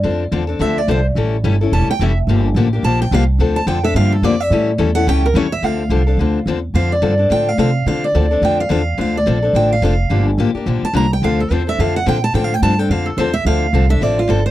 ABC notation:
X:1
M:4/4
L:1/8
Q:"Swing" 1/4=215
K:Dm
V:1 name="Steel-string acoustic guitar"
z4 e d c z | z4 a g e z | z4 a g f z | z a g e f A d e- |
e z2 ^f g B ^c e | f6 z2 | f d3 g f f2 | f d3 g f f2 |
f d3 g f f2- | f z4 a b g | f A c e f ^f g a | (3g f g a g f A c e |
f3 e d F A c |]
V:2 name="Steel-string acoustic guitar"
[D,F,CDA] z [D,F,CDA] [CDA] [D,F,CDA] z [D,F,CDA] z | [E,G,^CEA] z [E,G,CEA] [CEA] [E,G,CEA] z [E,G,CEA] z | [D,F,B,DG] z [D,F,B,DG] [B,DG] [D,F,B,DG] z [D,F,B,DG] z | [D,F,CDA] z [D,F,CDA] [CDA] [D,F,B,DG] z [D,F,B,DG] z |
[E,G,^CEA] z [E,G,CEA] [CEA] [E,G,CEA] z [E,G,CEA] z | [D,F,CDA] z [D,F,CDA] [CDA] [D,F,CDA] z [D,F,CDA] z | [D,F,CDA] z [D,F,CDA] [CDA] [D,F,CDA] z [D,F,CDA] z | [D,F,CDA] z [D,F,CDA] [CDA] [D,F,CDA] z [D,F,CDA] z |
[D,F,CDA] z [D,F,CDA] [CDA] [D,F,CDA] z [D,F,CDA] z | [D,F,B,DG] z [D,F,B,DG] [B,DG] [D,F,B,DG] z [D,F,B,DG] z | [D,F,CDA] z [D,F,CDA] [CDA] [D,F,CDA] z [D,F,CDA] z | [D,F,CDA] z [D,F,CDA] [CDA] [D,F,CDA] z [D,F,CDA] z |
[D,F,CDA] z [D,F,CDA] [CDA] [D,F,CDA] z [D,F,CDA] z |]
V:3 name="Upright bass" clef=bass
F,,2 E,,2 D,,2 C,,2 | A,,,2 G,,,2 E,,, z F,,,2 | G,,,2 A,,,2 B,,,2 C,,2 | D,,2 F,,2 G,,2 F,,2 |
A,,2 E,,2 ^C,,2 E,,2 | D,,2 C,,2 D,,2 E,,2 | F,,2 G,,2 A,,2 C,2 | D,2 D,,2 F,,2 E,,2 |
D,,2 B,,,2 A,,,2 F,,,2 | G,,,2 A,,, z B,,, z C,,2 | D,,2 E,,2 F,,2 B,,2 | A,,2 G,,2 F,,2 E,,2 |
D,,2 C,,2 A,,,2 G,,,2 |]